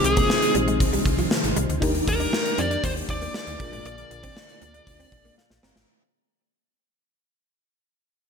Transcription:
Already playing: C3 D#3 F3 G#3 C4 D#4 F4 G#4
0.04 C2 G#4, muted clean electric guitar stroke, closed hi-hat
0.17 A#3, kick, closed hi-hat
0.30 muted clean electric guitar stroke, snare
0.42 closed hi-hat
0.55 A#1 G3, closed hi-hat
0.68 G#3, closed hi-hat
0.80 C2, kick, closed hi-hat
0.93 G3, closed hi-hat
1.06 C2, muted clean electric guitar stroke, kick, closed hi-hat
1.18 F3, closed hi-hat
1.31 snare
1.44 G#1, closed hi-hat
1.56 C2 G3, closed hi-hat
1.69 D2, closed hi-hat
1.81 D#2 D#3 G3 A#3 D4 D#4 G4 A#4 D5, kick, closed hi-hat
1.95 closed hi-hat
2.07 D#2 A#4, muted clean electric guitar stroke, kick, closed hi-hat
2.20 D4, closed hi-hat
2.33 muted clean electric guitar stroke, snare
2.46 closed hi-hat
2.58 F2 C4 D5, closed hi-hat
2.71 D4, closed hi-hat
2.84 D#2 A#3 C5, kick, closed hi-hat
2.96 muted clean electric guitar stroke, closed hi-hat
3.09 D#2 D5, kick, closed hi-hat
3.22 A#3, closed hi-hat
3.34 G3, snare
3.47 D2, muted clean electric guitar stroke, closed hi-hat
3.59 A#1 A#2 D3 F3 G#3 A#3 D4 F4 G#4 A#4, kick, closed hi-hat
3.73 G#1 G#3, closed hi-hat
3.85 A#1 A#3 D5, closed hi-hat
3.98 closed hi-hat
4.11 A#1, muted clean electric guitar stroke, closed hi-hat
4.23 C4, kick, closed hi-hat
4.36 muted clean electric guitar stroke, snare
4.49 closed hi-hat
4.62 D2 A#3, closed hi-hat
4.74 D4, closed hi-hat
4.87 D2, kick, closed hi-hat
5.00 C4, closed hi-hat
5.12 A#1, muted clean electric guitar stroke, kick, closed hi-hat
5.25 A#3, closed hi-hat
5.38 F5, snare
5.50 A#1, snare
5.63 G1 C4 A#5, snare
5.76 G#1, snare

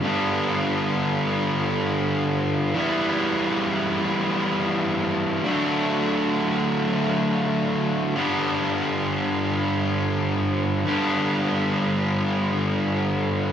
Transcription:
0.02 G2 D3 G3 B3 D4
2.74 E3 G3 B3 E4
5.44 D3 F#3 A3 D4
8.15 G2 D3 G3 B3 D4 G4
10.86 G2 D3 G3 B3 D4 G4

